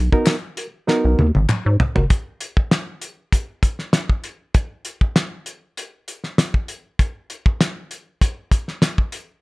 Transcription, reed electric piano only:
0.12 0.34 B3 medium
0.12 0.34 D#4 medium
0.12 0.35 F#4 medium
0.12 0.35 A#4 medium
0.57 0.65 F#4 soft
0.57 0.66 A#4 soft
0.87 1.25 B3 medium
0.87 1.25 D#4 medium
0.87 1.26 F#4 medium
0.87 1.26 A#4 medium
1.65 1.72 F#4 soft
1.65 1.73 C#5 soft
1.95 2.03 F#4 medium
1.95 2.03 A#4 medium

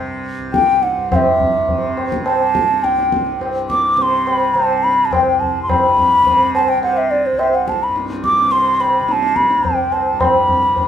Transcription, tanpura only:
0.00 0.38 C2 medium
0.00 0.96 G2 medium
0.00 1.68 C3 medium
0.39 2.83 C2 medium
0.96 1.10 G2 medium
1.10 3.40 G2 medium
1.68 2.26 C3 medium
2.26 3.95 C3 medium
2.83 5.09 C2 medium
3.40 5.65 G2 medium
3.95 4.53 C3 medium
4.53 6.21 C3 medium
5.09 7.32 C2 medium
5.66 7.89 G2 medium
6.21 6.76 C3 medium
6.76 8.44 C3 medium
7.33 9.57 C2 medium
7.89 10.13 G2 medium
8.44 9.01 C3 medium
9.01 10.69 C3 medium
9.57 10.88 C2 medium
10.13 10.88 G2 medium
10.69 10.88 C3 medium

